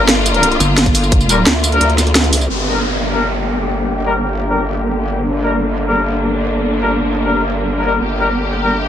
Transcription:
Already playing: G1 D3 A#3 F4
0.09 snare, closed hi-hat
0.26 closed hi-hat, tambourine
0.34 G3 D4 A#4, closed hi-hat
0.43 closed hi-hat
0.52 closed hi-hat
0.60 G1, closed hi-hat, tambourine
0.78 snare, closed hi-hat
0.86 kick, closed hi-hat
0.95 open hi-hat, tambourine
1.03 tambourine
1.12 kick, closed hi-hat
1.21 tambourine
1.29 G3 D4 A#4, closed hi-hat, tambourine
1.46 D2, snare, closed hi-hat
1.64 closed hi-hat, tambourine
1.72 G3 D4 A#4, closed hi-hat
1.81 D2, closed hi-hat
1.90 closed hi-hat
1.98 snare, closed hi-hat, tambourine
2.07 closed hi-hat
2.15 snare, closed hi-hat
2.24 closed hi-hat
2.29 C#2, open hi-hat, tambourine
2.41 tambourine
2.50 G1 D3 A#3 G4, downlifter
2.67 G3 D4 A#4
3.10 G3 D4 A#4
4.05 G3 D4 A#4
4.48 G3 D4 A#4
5.26 D4
5.43 G3 D4 A#4
5.86 G3 D4 A#4
6.81 G3 D4 A#4
7.24 G3 D4 A#4
7.76 G3 D4 A#4
7.84 G3 D4 A#4
8.02 G1 G4
8.19 G3 D4 A#4
8.62 G3 D4 A#4

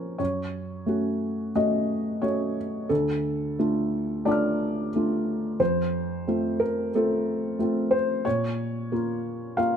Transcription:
Already playing: F3 C#4 F4 A#4 C5 C#5
0.18 F#2 C#5
0.86 A3 C#4 F#4
1.55 A3 C#4 F#4 D#5
2.22 A3 C#4 F#4 C#5
2.89 D2 A4
3.59 A3 D4 F4
4.25 A3 D4 F4 D5 A5 D6
4.31 F6
4.95 A3 D4 F4
5.60 F2 C5
6.27 A3 C4 F4
6.60 A#4
6.95 A3 C4 F4 A4
7.59 A3 C4 F4
7.91 C5
8.25 A#2 C#5
8.92 A#3 F4
9.57 A#3 F4 F5

